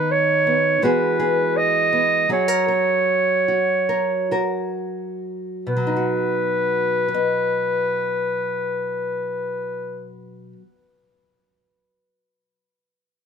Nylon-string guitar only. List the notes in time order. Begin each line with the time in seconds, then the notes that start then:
Already playing: D#3 B3 D#4
0.47 B3
0.82 E3 G#3 B3 F#4 G#4
1.20 G#4
1.93 B3
2.29 F#3 G#4
2.48 A#4
2.68 A#4
3.48 F#4
3.89 A#4
4.31 F#4 A#4
5.67 B2
5.77 F#3
5.87 D#4
5.97 F#4
7.09 B4
7.14 D#5